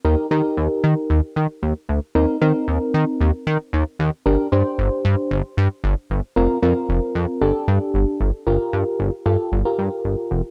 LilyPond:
<<
  \new Staff \with { instrumentName = "FM electric piano" } { \time 4/4 \key g \minor \tempo 4 = 114 <ees' g' bes'>8 <ees' g' bes'>4.~ <ees' g' bes'>16 r4. r16 | <c' ees' bes'>8 <c' ees' bes'>4.~ <c' ees' bes'>16 r4. r16 | <d' g' bes'>8 <d' g' c''>4.~ <d' g' c''>16 r4. r16 | <c' f' bes'>8 <c' f' bes'>4. <d' g' a'>4.~ <d' g' a'>16 r16 |
<f' g' bes'>4~ <f' g' bes'>16 r16 <f' g' a'>8 r16 <f' g' bes'>4. r16 | }
  \new Staff \with { instrumentName = "Analog synth bass" } { \clef bass \time 4/4 \key g \minor ees,16 r16 ees16 r16 ees,16 r16 ees16 r16 ees,16 r16 ees16 r16 ees,16 r16 d,16 r16 | ees,16 r16 ees16 r16 ees,16 r16 ees16 r16 ees,16 r16 ees16 r16 ees,16 r16 ees,16 r16 | g,,16 r16 g,16 r16 g,,16 r16 g,16 r16 g,,16 r16 g,16 r16 g,,16 r16 g,,16 r16 | f,,16 r16 f,16 r16 f,,16 r16 f,16 r16 g,,16 r16 g,16 r16 g,,16 r16 g,,16 r16 |
g,,16 r16 g,16 r16 g,,16 r16 g,16 r16 g,,16 r16 g,16 r16 g,,16 r16 f,,16 r16 | }
>>